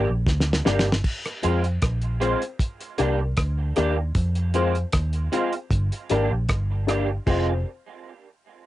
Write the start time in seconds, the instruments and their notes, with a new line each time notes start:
0.10 fingered electric bass A#1
0.27 fingered electric bass D2, kick, snare
0.40 snare
0.53 snare
0.65 fingered electric bass G1, clean electric guitar A#3 D4 G4, upright piano D4 G4 A#4 D5, snare
0.79 snare
0.92 snare
1.04 kick, crash
1.25 cross-stick, closed hi-hat
1.43 fingered electric bass F2, clean electric guitar G#3 C4 F4, upright piano C4 F4 G#4 C5, closed hi-hat
1.64 closed hi-hat
1.82 fingered electric bass A#1, kick, cross-stick, closed hi-hat
2.02 closed hi-hat
2.20 clean electric guitar G#3 C4 F4, upright piano C4 F4 G#4 C5, closed hi-hat
2.42 closed hi-hat
2.59 kick, closed hi-hat
2.80 closed hi-hat
2.98 fingered electric bass C2, clean electric guitar A#3 D4 G4, upright piano D4 G4 A#4 D5, closed hi-hat
3.20 upright piano A#4 D5
3.37 fingered electric bass D2, kick, cross-stick, closed hi-hat
3.76 fingered electric bass D#2, clean electric guitar A#3 D4 G4, upright piano D4 G4 A#4 D5, cross-stick, closed hi-hat
3.97 muted clean electric guitar stroke
4.15 fingered electric bass F2, kick, closed hi-hat
4.35 closed hi-hat
4.54 clean electric guitar G#3 C4 F4, upright piano C4 F4 G#4 C5, closed hi-hat
4.75 closed hi-hat
4.92 fingered electric bass D#2, kick, cross-stick, closed hi-hat
5.13 closed hi-hat
5.32 clean electric guitar G#3 C4 F4, upright piano C4 F4 G#4 C5, closed hi-hat
5.53 closed hi-hat
5.71 fingered electric bass G1, kick, closed hi-hat
5.92 closed hi-hat
6.10 fingered electric bass G#1, clean electric guitar A#3 D4 G4, upright piano D4 G4 A#4 D5, closed hi-hat
6.31 fingered electric bass A#1
6.49 fingered electric bass G1, kick, cross-stick, closed hi-hat
6.87 clean electric guitar A#3 D4 G4, upright piano D4 G4 A#4 D5, cross-stick, closed hi-hat
7.10 muted clean electric guitar stroke
7.26 fingered electric bass F1, clean electric guitar G#3 C4 F4, upright piano C4 F4 G#4 C5, kick, crash